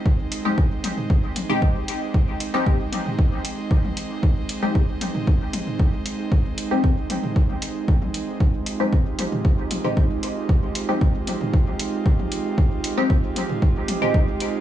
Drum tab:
HH |--x---x---x---x-|--x---x---x---x-|--x---x---x---x-|--x---x---x---x-|
T1 |---o--o---o-----|---o--o--o---o--|---o--o---o-----|---o--o--o---o--|
T2 |-------o---o----|-------o--------|-------o---o----|-------o--------|
BD |o---o---o---o---|o---o---o---o---|o---o---o---o---|o---o---o---o---|

HH |--x---x---x---x-|--x---x---x---x-|--x---x---x---x-|
T1 |---o--o---o-----|---o--o--o---o--|---o--o---o-----|
T2 |-------o---o----|-------o--------|-------o---o----|
BD |o---o---o---o---|o---o---o---o---|o---o---o---o---|